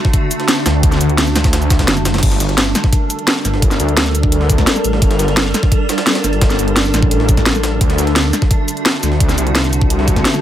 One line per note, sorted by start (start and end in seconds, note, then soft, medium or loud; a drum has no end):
0.00 2.19 D3 medium
0.00 2.19 A3 medium
0.00 2.19 D4 medium
0.00 2.19 F#4 medium
0.05 kick loud
0.05 snare soft
0.13 kick loud
0.13 closed hi-hat loud
0.13 closed hi-hat medium
0.31 closed hi-hat medium
0.31 shaker medium
0.40 snare soft
0.40 closed hi-hat soft
0.48 snare loud
0.48 snare soft
0.48 closed hi-hat loud
0.48 closed hi-hat medium
0.57 snare soft
0.66 0.99 D2 loud
0.66 snare loud
0.66 snare soft
0.66 closed hi-hat medium
0.66 shaker medium
0.83 kick loud
0.83 closed hi-hat medium
0.83 closed hi-hat loud
0.92 snare soft
0.92 closed hi-hat soft
0.92 shaker soft
1.01 1.86 D2 medium
1.01 closed hi-hat medium
1.01 shaker medium
1.09 closed hi-hat soft
1.18 snare loud
1.18 closed hi-hat medium
1.18 closed hi-hat loud
1.27 closed hi-hat soft
1.27 shaker soft
1.36 snare loud
1.36 snare medium
1.36 closed hi-hat medium
1.36 shaker medium
1.44 kick loud
1.44 snare loud
1.44 closed hi-hat medium
1.53 snare loud
1.53 closed hi-hat medium
1.53 closed hi-hat loud
1.62 closed hi-hat soft
1.62 shaker soft
1.70 kick loud
1.70 snare loud
1.70 closed hi-hat medium
1.70 shaker medium
1.79 kick medium
1.79 snare loud
1.79 snare soft
1.79 closed hi-hat soft
1.79 closed hi-hat medium
1.88 2.21 F#1 medium
1.88 snare loud
1.88 closed hi-hat loud
1.88 closed hi-hat medium
1.97 snare soft
1.97 closed hi-hat medium
1.97 shaker soft
2.05 snare loud
2.05 closed hi-hat medium
2.05 shaker medium
2.14 snare medium
2.14 snare soft
2.14 closed hi-hat medium
2.18 snare medium
2.18 closed hi-hat medium
2.23 2.74 G1 loud
2.23 7.77 G3 medium
2.23 10.41 D4 medium
2.23 7.77 A4 medium
2.23 7.77 A#4 medium
2.23 kick loud
2.23 closed hi-hat loud
2.23 closed hi-hat medium
2.23 crash medium
2.32 snare medium
2.32 closed hi-hat soft
2.40 snare medium
2.40 closed hi-hat medium
2.40 shaker medium
2.49 snare soft
2.49 closed hi-hat soft
2.58 snare loud
2.58 closed hi-hat loud
2.58 closed hi-hat medium
2.75 snare medium
2.75 closed hi-hat medium
2.75 shaker medium
2.84 kick loud
2.84 snare soft
2.93 kick loud
2.93 closed hi-hat loud
2.93 closed hi-hat medium
3.10 closed hi-hat medium
3.10 shaker medium
3.19 closed hi-hat soft
3.27 snare loud
3.27 closed hi-hat loud
3.27 open hi-hat medium
3.45 3.78 G1 loud
3.45 snare soft
3.45 closed hi-hat medium
3.45 shaker medium
3.54 snare medium
3.62 kick loud
3.62 closed hi-hat medium
3.62 closed hi-hat loud
3.71 snare soft
3.71 closed hi-hat soft
3.71 shaker soft
3.80 4.66 D2 loud
3.80 closed hi-hat medium
3.80 shaker medium
3.89 closed hi-hat soft
3.97 snare loud
3.97 closed hi-hat medium
3.97 closed hi-hat loud
4.06 closed hi-hat soft
4.06 shaker soft
4.15 closed hi-hat medium
4.15 shaker medium
4.23 kick loud
4.32 closed hi-hat medium
4.32 closed hi-hat loud
4.41 snare soft
4.50 kick loud
4.50 closed hi-hat medium
4.50 shaker medium
4.58 kick medium
4.58 snare soft
4.58 closed hi-hat soft
4.67 snare loud
4.67 closed hi-hat medium
4.76 snare soft
4.76 shaker soft
4.84 5.00 A1 loud
4.84 closed hi-hat medium
4.84 shaker medium
4.93 snare soft
5.02 5.53 G1 loud
5.02 kick loud
5.02 closed hi-hat medium
5.11 snare medium
5.11 closed hi-hat soft
5.19 snare medium
5.19 closed hi-hat medium
5.19 shaker medium
5.28 snare soft
5.28 closed hi-hat soft
5.37 snare loud
5.37 closed hi-hat medium
5.54 snare medium
5.54 closed hi-hat medium
5.54 shaker medium
5.63 kick loud
5.63 snare soft
5.72 kick loud
5.72 closed hi-hat loud
5.72 closed hi-hat medium
5.89 snare loud
5.89 closed hi-hat medium
5.89 shaker medium
5.98 snare loud
5.98 closed hi-hat medium
5.98 closed hi-hat soft
6.07 snare loud
6.07 closed hi-hat medium
6.15 snare loud
6.15 closed hi-hat medium
6.24 6.57 G1 loud
6.24 snare soft
6.24 closed hi-hat medium
6.24 shaker medium
6.33 closed hi-hat medium
6.41 kick loud
6.41 snare loud
6.41 closed hi-hat medium
6.50 snare soft
6.50 closed hi-hat soft
6.50 shaker soft
6.59 6.92 G1 medium
6.59 closed hi-hat medium
6.59 shaker medium
6.68 closed hi-hat soft
6.76 snare loud
6.76 closed hi-hat medium
6.85 closed hi-hat soft
6.85 shaker soft
6.94 7.80 A1 loud
6.94 snare medium
6.94 closed hi-hat medium
6.94 shaker medium
7.03 kick loud
7.11 closed hi-hat medium
7.20 snare soft
7.29 kick loud
7.29 closed hi-hat medium
7.29 shaker medium
7.37 kick medium
7.37 snare soft
7.37 closed hi-hat soft
7.46 snare loud
7.46 closed hi-hat medium
7.55 snare soft
7.55 shaker soft
7.63 snare loud
7.63 closed hi-hat medium
7.63 shaker medium
7.81 8.32 D2 loud
7.81 10.41 D3 medium
7.81 10.41 A3 medium
7.81 10.41 F#4 medium
7.81 kick loud
7.81 closed hi-hat medium
7.90 snare medium
7.90 closed hi-hat soft
7.98 snare medium
7.98 closed hi-hat medium
7.98 shaker medium
8.07 snare soft
8.07 closed hi-hat soft
8.16 snare loud
8.16 closed hi-hat medium
8.33 snare medium
8.33 closed hi-hat medium
8.33 shaker medium
8.42 kick loud
8.42 snare soft
8.51 kick loud
8.51 closed hi-hat medium
8.68 closed hi-hat medium
8.68 shaker medium
8.77 closed hi-hat soft
8.86 snare loud
8.86 closed hi-hat medium
8.86 open hi-hat medium
9.03 9.36 D2 loud
9.03 snare soft
9.03 closed hi-hat medium
9.03 shaker medium
9.12 snare soft
9.20 kick loud
9.20 closed hi-hat loud
9.29 snare soft
9.29 closed hi-hat soft
9.29 shaker soft
9.38 10.24 C2 medium
9.38 closed hi-hat medium
9.38 shaker medium
9.47 closed hi-hat soft
9.55 snare loud
9.55 closed hi-hat medium
9.64 closed hi-hat soft
9.64 shaker soft
9.73 closed hi-hat medium
9.73 shaker medium
9.82 kick loud
9.90 closed hi-hat medium
9.99 snare soft
10.08 kick loud
10.08 closed hi-hat medium
10.08 shaker medium
10.16 kick medium
10.16 snare soft
10.16 closed hi-hat soft
10.25 snare loud
10.25 closed hi-hat medium
10.34 snare soft
10.34 shaker soft